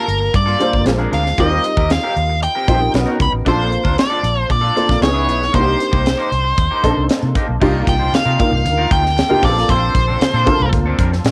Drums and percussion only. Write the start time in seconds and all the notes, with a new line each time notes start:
0.09 closed hi-hat
0.34 kick, closed hi-hat
0.60 closed hi-hat
0.73 kick
0.86 snare, closed hi-hat
1.13 closed hi-hat
1.26 snare
1.38 kick, closed hi-hat
1.64 closed hi-hat
1.77 kick
1.90 snare, closed hi-hat
2.17 closed hi-hat
2.42 closed hi-hat
2.68 kick, closed hi-hat
2.94 snare, closed hi-hat
3.20 kick, closed hi-hat
3.46 kick, closed hi-hat
3.72 closed hi-hat
3.85 kick
3.98 snare, closed hi-hat
4.24 closed hi-hat
4.50 kick, closed hi-hat
4.77 closed hi-hat
4.89 kick, snare
5.02 snare, closed hi-hat
5.29 closed hi-hat
5.42 snare
5.54 kick, closed hi-hat
5.80 closed hi-hat
5.93 kick
6.06 snare, closed hi-hat
6.32 closed hi-hat
6.58 kick, closed hi-hat
6.84 kick, closed hi-hat
7.09 snare, closed hi-hat
7.35 kick, closed hi-hat
7.62 kick, crash, muted conga, low conga
7.76 muted conga
7.87 kick, closed hi-hat
8.01 high conga
8.13 snare, closed hi-hat, muted conga, high conga
8.26 muted conga
8.40 kick, closed hi-hat, high conga
8.53 low conga
8.65 closed hi-hat, muted conga, high conga, low conga
8.79 muted conga
8.91 kick, closed hi-hat, high conga
9.06 snare
9.18 snare, closed hi-hat
9.31 muted conga, high conga
9.43 kick, open hi-hat
9.58 snare
9.69 kick, closed hi-hat, muted conga, low conga
9.83 muted conga
9.95 kick, closed hi-hat
10.08 high conga
10.21 snare, closed hi-hat, high conga
10.46 kick, closed hi-hat, high conga
10.60 low conga
10.73 kick, closed hi-hat, muted conga, high conga, low conga
10.99 kick, closed hi-hat, high conga
11.13 snare
11.25 snare, closed hi-hat, muted conga